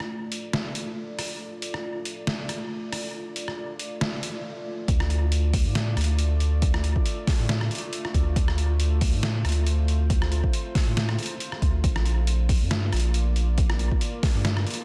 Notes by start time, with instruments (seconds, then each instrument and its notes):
Already playing: ambient pad A3 F4 D5
0.00 cross-stick
0.32 closed hi-hat
0.53 snare
0.75 closed hi-hat
1.19 cross-stick, open hi-hat
1.62 closed hi-hat
1.74 cross-stick
2.05 closed hi-hat
2.27 snare
2.49 cross-stick, closed hi-hat
2.93 cross-stick, open hi-hat
3.36 closed hi-hat
3.48 cross-stick
3.79 closed hi-hat
4.01 snare
4.23 closed hi-hat
4.88 sub bass D2, ambient pad A3 F4 D5, kick, closed hi-hat
5.00 cross-stick
5.10 closed hi-hat
5.32 closed hi-hat
5.53 kick, open hi-hat
5.65 sub bass A2
5.75 snare, closed hi-hat
5.97 sub bass D2, cross-stick, closed hi-hat
6.01 closed hi-hat
6.04 closed hi-hat
6.19 closed hi-hat
6.40 closed hi-hat
6.62 kick, closed hi-hat
6.74 cross-stick
6.84 closed hi-hat
6.96 kick
7.06 closed hi-hat
7.27 kick, snare, open hi-hat
7.39 sub bass A2
7.49 snare, closed hi-hat
7.61 cross-stick
7.71 closed hi-hat
7.75 closed hi-hat
7.78 closed hi-hat
7.93 closed hi-hat
8.05 cross-stick
8.14 sub bass D2, kick, closed hi-hat
8.36 sub bass D2, ambient pad C5, kick, closed hi-hat
8.48 cross-stick
8.58 closed hi-hat
8.80 closed hi-hat
9.01 kick, open hi-hat
9.13 sub bass A2
9.23 snare, closed hi-hat
9.45 sub bass D2, cross-stick, closed hi-hat
9.49 closed hi-hat
9.52 closed hi-hat
9.67 closed hi-hat
9.88 closed hi-hat
10.10 kick, closed hi-hat
10.22 cross-stick
10.32 closed hi-hat
10.44 kick
10.53 closed hi-hat
10.75 kick, snare, open hi-hat
10.87 sub bass A2
10.97 snare, closed hi-hat
11.09 cross-stick
11.19 closed hi-hat
11.23 closed hi-hat
11.26 closed hi-hat
11.40 closed hi-hat
11.52 cross-stick
11.62 sub bass D2, kick, closed hi-hat
11.84 sub bass A#1, ambient pad A#3 D5, kick, closed hi-hat
11.96 cross-stick
12.06 closed hi-hat
12.27 closed hi-hat
12.49 kick, open hi-hat
12.61 sub bass G2
12.71 snare, closed hi-hat
12.93 sub bass A#1, cross-stick, closed hi-hat
12.96 closed hi-hat
13.00 closed hi-hat
13.14 closed hi-hat
13.36 closed hi-hat
13.58 kick, closed hi-hat
13.70 cross-stick
13.79 closed hi-hat
13.92 kick
14.01 closed hi-hat
14.23 kick, snare, open hi-hat
14.35 sub bass G2
14.45 snare, closed hi-hat
14.57 cross-stick
14.67 closed hi-hat
14.71 closed hi-hat
14.74 closed hi-hat